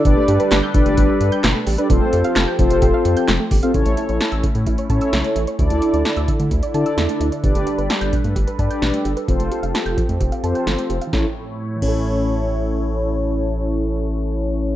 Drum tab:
CC |----------------|----------------|----------------|----------------|
HH |x-xxx-xxx-xxx-ox|x-xxx-xxx-xxx-ox|xxxxxxxxxxxxxxxx|xxxxxxxxxxxxxxxx|
CP |----x-------x---|----x-------x---|----------------|----------------|
SD |----o-------o---|----o-------o---|----o-------o---|----o-------o---|
BD |o-----o-o-------|o-----o-o-----o-|o-----o-o-o-----|o-----o-o-------|

CC |----------------|----------------|------x---------|----------------|
HH |xxxxxxxxxxxxxxxx|xxxxxxxxxxxxxxxx|----------------|----------------|
CP |----------------|----------------|----------------|----------------|
SD |----o-------o---|----o-------o---|o---------------|----------------|
BD |o-----o-o-o-----|o-----o-o-------|o-----o---------|----------------|